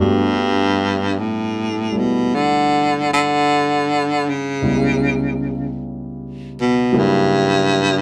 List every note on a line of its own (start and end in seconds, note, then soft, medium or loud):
0.00 4.61 G2 soft
0.00 1.21 G2 medium
0.00 1.90 G3 soft
0.00 1.91 A3 soft
0.00 4.62 B3 soft
0.00 4.62 F#4 soft
1.19 2.00 A2 medium
1.91 4.61 G3 soft
1.91 4.62 A3 soft
1.91 4.62 E4 soft
1.98 2.36 B2 medium
2.35 3.09 D3 medium
3.13 4.31 D3 medium
4.29 5.80 C#3 medium
4.62 6.92 C#2 soft
4.62 6.92 C#3 soft
4.62 6.92 G3 soft
4.62 6.93 B3 soft
4.62 6.93 E4 soft
6.61 7.00 B2 medium
6.92 8.02 C#3 soft
6.92 8.02 F#3 soft
6.92 8.02 G3 soft
6.92 8.02 A#3 soft
6.92 8.02 E4 soft
6.98 8.02 G2 medium